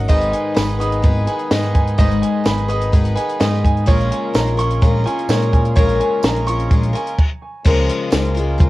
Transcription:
0.08 picked electric bass G#1, twelve-string acoustic guitar G#2 D#3 G#3 B3 D#4 B4, harmonium D#3 G#3 B3 G#4, upright piano D#5, kick, closed hi-hat
0.21 closed hi-hat
0.31 upright piano G#5, closed hi-hat
0.54 picked electric bass G#1, twelve-string acoustic guitar G#3 B3 D#4 B4, upright piano B5, snare, closed hi-hat, tambourine
0.69 closed hi-hat
0.78 twelve-string acoustic guitar G#3 B3 D#4 B4, upright piano D#6, closed hi-hat
0.92 closed hi-hat
1.02 picked electric bass G#1, twelve-string acoustic guitar G#3 B3 D#4 B4, kick, closed hi-hat
1.27 twelve-string acoustic guitar G#3 B3 D#4 B4, upright piano G#5, closed hi-hat
1.39 closed hi-hat
1.51 picked electric bass G#2, twelve-string acoustic guitar G#3 B3 D#4 B4, upright piano D#5, snare, closed hi-hat, tambourine
1.63 snare, closed hi-hat
1.74 upright piano G#5, kick, closed hi-hat
1.87 closed hi-hat
1.98 picked electric bass G#1, twelve-string acoustic guitar G#2 D#3 G#3 B3 D#4 B4, upright piano D#5, kick, closed hi-hat
2.11 closed hi-hat
2.22 upright piano G#5, closed hi-hat
2.44 picked electric bass G#1, twelve-string acoustic guitar G#3 B3 D#4 B4, upright piano B5, snare, closed hi-hat, tambourine
2.58 closed hi-hat
2.69 twelve-string acoustic guitar G#3 B3 D#4 B4, upright piano D#6, closed hi-hat
2.82 closed hi-hat
2.93 picked electric bass G#1, twelve-string acoustic guitar G#3 B3 D#4 B4, kick, closed hi-hat
3.05 closed hi-hat
3.16 twelve-string acoustic guitar G#3 B3 D#4 B4, upright piano G#5, closed hi-hat
3.29 closed hi-hat
3.40 picked electric bass G#2, twelve-string acoustic guitar G#3 B3 D#4 B4, upright piano D#5, snare, closed hi-hat, tambourine
3.54 snare
3.65 upright piano G#5, kick, closed hi-hat
3.77 closed hi-hat
3.86 picked electric bass A#1, twelve-string acoustic guitar A#2 G#3 C#4 F4 A#4, harmonium C#3 A#3 F4, upright piano C#5, kick, closed hi-hat
4.00 closed hi-hat
4.11 upright piano G#5, closed hi-hat
4.34 picked electric bass A#1, twelve-string acoustic guitar G#3 C#4 F4 A#4, upright piano A#5, snare, closed hi-hat, tambourine
4.47 closed hi-hat
4.57 twelve-string acoustic guitar C#4 F4 A#4, upright piano C#6, closed hi-hat
4.71 closed hi-hat
4.82 picked electric bass A#1, twelve-string acoustic guitar G#3 C#4 F4 A#4, kick, closed hi-hat
5.04 twelve-string acoustic guitar C#4 F4 A#4, upright piano G#5, closed hi-hat
5.19 closed hi-hat
5.29 picked electric bass A#2, twelve-string acoustic guitar G#3 C#4 F4 A#4, upright piano C#5, snare, closed hi-hat, tambourine
5.42 closed hi-hat
5.53 upright piano G#5, kick, closed hi-hat
5.65 closed hi-hat
5.75 picked electric bass A#1, twelve-string acoustic guitar A#2 G#3 C#4 F4 A#4, upright piano C#5, kick, closed hi-hat
5.89 closed hi-hat
6.00 upright piano G#5, closed hi-hat
6.23 picked electric bass A#1, twelve-string acoustic guitar G#3 C#4 F4, upright piano A#5, snare, closed hi-hat, tambourine
6.28 twelve-string acoustic guitar A#4
6.36 closed hi-hat
6.47 twelve-string acoustic guitar F4 A#4, upright piano C#6, closed hi-hat
6.51 twelve-string acoustic guitar C#4
6.60 closed hi-hat
6.71 picked electric bass A#1, twelve-string acoustic guitar G#3 C#4 F4 A#4, kick, closed hi-hat
6.83 closed hi-hat
6.93 twelve-string acoustic guitar C#4 F4 A#4, upright piano G#5, closed hi-hat
7.07 closed hi-hat
7.19 kick, crash
7.65 picked electric bass C#2, twelve-string acoustic guitar C#3 F3 G#3 F4 A#4, harmonium C#3 G#3 A#3 F4, kick, crash
7.89 closed hi-hat
8.10 picked electric bass C#2, twelve-string acoustic guitar F3 G#3 F4 A#4, snare, closed hi-hat, tambourine
8.25 closed hi-hat
8.34 twelve-string acoustic guitar G#3 F4 A#4, closed hi-hat
8.58 picked electric bass C#2, twelve-string acoustic guitar F3 G#3 F4 A#4, kick, closed hi-hat

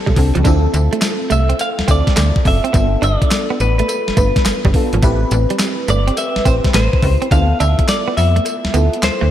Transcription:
Already playing: fm electric piano C4 D4 G4 A4, clean electric guitar A4
0.06 fm bass B1, clean electric guitar G3, kick
0.16 fm bass C2, fm electric piano C4 D4 G4 A4, muted clean electric guitar stroke, kick, open hi-hat
0.35 fm bass C#2, clean electric guitar F3, closed hi-hat
0.44 fm bass D2, fm electric piano C4 E4 F4 A4, clean electric guitar D4, kick, closed hi-hat, tambourine, cowbell
0.74 fm bass D2, muted clean electric guitar stroke, closed hi-hat, tambourine
0.93 clean electric guitar A3, closed hi-hat
1.02 muted clean electric guitar stroke, snare, clap, closed hi-hat, tambourine, cowbell
1.30 fm bass C2, clean electric guitar A3 E5, closed hi-hat, tambourine
1.49 clean electric guitar C4, closed hi-hat
1.59 clean electric guitar F5, closed hi-hat, tambourine, cowbell
1.79 fm bass D2, snare
1.88 fm bass D2, clean electric guitar C4 D5, fm electric piano C4 E4 F4 A4, kick, closed hi-hat, tambourine
2.07 kick, snare, closed hi-hat
2.16 fm bass D2, clean electric guitar A3, snare, clap, closed hi-hat, tambourine, cowbell
2.36 kick
2.45 fm bass F#1, fm electric piano C4 E4 F4 A4, clean electric guitar E5, muted clean electric guitar stroke, kick, open hi-hat
2.64 clean electric guitar C4, closed hi-hat
2.73 fm bass G1, clean electric guitar B3, fm electric piano B3 D4 F4 A4, kick, closed hi-hat, tambourine, cowbell
3.02 fm bass G1, clean electric guitar D4 D5, closed hi-hat, tambourine
3.21 muted clean electric guitar stroke, kick, closed hi-hat
3.31 snare, clap, closed hi-hat, tambourine, cowbell
3.50 clean electric guitar B3
3.60 fm bass A1, clean electric guitar B4, muted clean electric guitar stroke, closed hi-hat, tambourine
3.78 clean electric guitar A3 B4, closed hi-hat
3.88 closed hi-hat, tambourine, cowbell
4.08 fm bass G1, snare
4.17 fm bass G1, clean electric guitar A3, fm electric piano B3 D4 F4 B4, kick, closed hi-hat, tambourine
4.36 kick, snare, closed hi-hat
4.45 fm bass G1, snare, clap, closed hi-hat, tambourine, cowbell
4.65 fm bass G1, clean electric guitar G3, kick
4.74 fm electric piano B3 D4 F4 A4, muted clean electric guitar stroke, kick, open hi-hat
4.93 fm bass G#1, clean electric guitar F3, closed hi-hat
5.03 fm bass A1, clean electric guitar A3, fm electric piano C4 E4 G4 B4, kick, closed hi-hat, tambourine, cowbell
5.31 fm bass A1, muted clean electric guitar stroke, closed hi-hat, tambourine
5.50 clean electric guitar G3, closed hi-hat
5.59 muted clean electric guitar stroke, snare, clap, closed hi-hat, tambourine, cowbell
5.88 fm bass G1, clean electric guitar A3 D5, closed hi-hat, tambourine
6.07 clean electric guitar C4, closed hi-hat
6.17 clean electric guitar E5, closed hi-hat, tambourine, cowbell
6.36 fm bass A1, snare
6.45 fm bass A1, fm electric piano C4 E4 G4 B4, clean electric guitar C4 C5, kick, closed hi-hat, tambourine
6.64 kick, snare, closed hi-hat
6.74 fm bass A1, clean electric guitar A3 C5, snare, clap, closed hi-hat, tambourine, cowbell
6.93 kick
7.03 fm bass C#2, fm electric piano C4 E4 G4 B4, muted clean electric guitar stroke, kick, open hi-hat
7.22 clean electric guitar C4, closed hi-hat
7.31 fm bass D2, fm electric piano B3 E4 F4 A4, clean electric guitar D4 F5, kick, closed hi-hat, tambourine, cowbell
7.60 fm bass D2, clean electric guitar D4 E5, closed hi-hat, tambourine
7.79 muted clean electric guitar stroke, kick, closed hi-hat
7.88 clean electric guitar D5, snare, clap, closed hi-hat, tambourine, cowbell
8.08 clean electric guitar B3
8.17 fm bass F2, clean electric guitar E5, muted clean electric guitar stroke, open hi-hat, tambourine
8.36 clean electric guitar A3, closed hi-hat
8.45 closed hi-hat, tambourine, cowbell
8.65 fm bass D2, snare
8.74 fm bass D2, clean electric guitar B3, fm electric piano B3 E4 F4 A4, closed hi-hat, tambourine
8.93 closed hi-hat
9.03 fm bass D2, clean electric guitar C5, snare, clap, closed hi-hat, tambourine, cowbell
9.21 fm bass D2, clean electric guitar A3

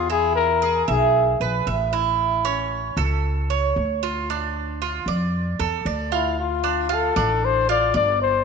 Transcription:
Already playing: upright bass E2, trumpet F4
0.10 cuban tres E4, trumpet G#4
0.36 trumpet A#4
0.62 cuban tres G#4
0.88 upright bass B1, trumpet G#4, cuban tres E5
1.40 upright bass A#1, cuban tres B4
1.67 upright bass A1, cuban tres E5
1.93 cuban tres E4
2.45 cuban tres C#4
2.97 upright bass C#2, cuban tres A4
3.50 cuban tres C#5
3.76 upright bass D2
4.03 cuban tres F4
4.30 cuban tres D4
4.82 cuban tres F4
5.06 upright bass F2, cuban tres D5
5.59 upright bass E2, cuban tres A4
5.85 upright bass D2, cuban tres D5
6.12 trumpet E4, cuban tres F4
6.40 trumpet F4
6.64 cuban tres D4
6.89 cuban tres F4, trumpet A4
7.16 upright bass A1, cuban tres D4
7.45 trumpet C5
7.69 cuban tres F4, trumpet D5
7.94 upright bass G1, cuban tres D5, trumpet D5
8.22 trumpet C5

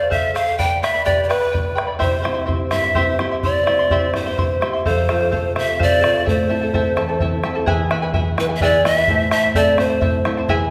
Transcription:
Already playing: pan flute D5
0.00 charango F5
0.10 charango A4 C5 F5, pan flute E5, bombo low
0.24 bombo rim
0.34 charango A4 C5 F5, pan flute F5, bombo rim
0.46 charango C5 F5
0.58 charango B4 D5 G5 B5, pan flute G5, bombo rim, bombo low
0.82 charango B4 D5 G5 B5, pan flute E5, bombo rim
0.94 charango B4 D5 B5
1.05 charango G4 B4 D5 G5 B5, pan flute D5, bombo rim, bombo low
1.23 pan flute D5
1.29 pan flute B4, charango B4 D5 G5 B5, bombo rim
1.40 charango B4 D5 B5, bombo rim
1.52 charango B4 D5 G5 B5, bombo low
1.66 bombo rim
1.75 charango B4 D5 G5 B5, bombo rim
1.87 charango B4 D5 B5
1.99 nylon-string guitar C3, charango E4 G4 C5 E5 C6, pan flute C5, bombo low
2.14 bombo rim
2.22 nylon-string guitar C4 E4 G4, charango E4 C5 E5 C6, bombo rim
2.34 charango E4 E5 C6, bombo rim
2.46 nylon-string guitar C4 E4 G4, charango E4 C5 E5 C6, bombo rim, bombo low
2.60 bombo rim
2.71 nylon-string guitar G2, charango E4 C5 E5 C6, pan flute E5, bombo rim
2.84 charango E4 E5 C6
2.95 nylon-string guitar C4 E4 G4, charango E4 G4 C5 E5 C6, bombo low
3.07 bombo rim
3.19 nylon-string guitar C4 E4 G4, charango E4 C5 E5 C6, bombo rim
3.31 charango E4 E5 C6
3.43 nylon-string guitar C3, charango E4 C5 E5 C6, pan flute D5, bombo low
3.55 bombo rim
3.66 nylon-string guitar C4 E4 G4, charango E4 C5 E5 C6, bombo rim
3.79 charango E4 E5 C6, bombo rim
3.90 nylon-string guitar C4 E4 G4, charango E4 G4 C5 E5 C6, bombo low
4.02 bombo rim
4.14 nylon-string guitar G2, charango E4 C5 E5 C6, pan flute C5, bombo rim
4.26 charango E4 E5 C6
4.37 nylon-string guitar C4 E4 G4, charango E4 C5 E5 C6, bombo low
4.50 bombo rim
4.61 nylon-string guitar C4 E4 G4, charango E4 C5 E5 C6, bombo rim
4.73 charango E4 E5 C6
4.85 nylon-string guitar F2, charango A4 C5 F5, pan flute C5, bombo low
4.97 bombo rim
5.09 nylon-string guitar C4 F4 A4, charango A4 C5 F5, bombo rim
5.19 charango C5 F5, bombo rim
5.31 nylon-string guitar C4 F4 A4, charango A4 C5 F5, bombo rim, bombo low
5.45 bombo rim
5.55 nylon-string guitar C3, charango A4 C5 F5, pan flute E5, bombo rim
5.67 charango C5 F5
5.79 nylon-string guitar C4 F4 A4, charango A4 C5 F5, pan flute D5, bombo low
5.92 bombo rim
6.00 nylon-string guitar C4 F4 A4, charango A4 C5 F5, bombo rim
6.13 charango C5 F5
6.25 nylon-string guitar A2, charango E4 A4 E5 A5, pan flute C5, bombo low
6.49 nylon-string guitar C4 E4 A4, charango E4 A4 E5 A5
6.62 charango E4 A4 A5
6.74 nylon-string guitar C4 E4 A4, charango E4 A4 C5 E5 A5, bombo rim, bombo low
6.96 nylon-string guitar E2, charango E4 A4 E5 A5, bombo rim
7.09 charango E4 A4 A5
7.20 nylon-string guitar C4 E4 A4, charango E4 A4 E5 A5, bombo low
7.32 bombo rim
7.44 nylon-string guitar C4 E4 A4, charango E4 A4 E5 A5, bombo rim
7.55 charango E4 A4 A5, bombo rim
7.66 nylon-string guitar E2, charango E4 G#4 B4 E5 G#5, bombo low
7.91 charango E4 B4 E5 G#5, bombo rim
8.02 charango E4 B4 G#5
8.14 nylon-string guitar B3 E4 G#4, charango E4 B4 E5 G#5, bombo low
8.37 nylon-string guitar B3 E4 G#4, charango E4 B4 E5 G#5, pan flute B4, bombo rim
8.49 charango E4 B4 G#5, bombo rim
8.56 pan flute E5
8.61 charango E4 G#4 B4 E5 G#5, pan flute D5, bombo rim, bombo low
8.73 bombo rim
8.85 nylon-string guitar B3 E4 G#4, charango E4 B4 E5 G#5, pan flute E5, bombo rim
8.97 charango E4 B4 G#5
9.08 nylon-string guitar A2, charango E4 C5 E5 A5, bombo low
9.31 charango E4 C5 E5 A5, pan flute E5, bombo rim
9.44 charango E4 C5 A5
9.55 nylon-string guitar C4 E4 A4, charango E4 A4 C5 E5 A5, pan flute D5, bombo low
9.78 nylon-string guitar C4 E4 A4, charango E4 C5 E5 A5, pan flute C5, bombo rim
9.90 charango E4 C5 A5, bombo rim
10.01 charango E4 C5 E5 A5, bombo rim, bombo low
10.14 bombo rim
10.25 nylon-string guitar C4 E4 A4, charango E4 C5 E5 A5, bombo rim
10.37 charango E4 C5 A5
10.48 nylon-string guitar E2, charango E4 G#4 B4 E5 G#5, bombo low

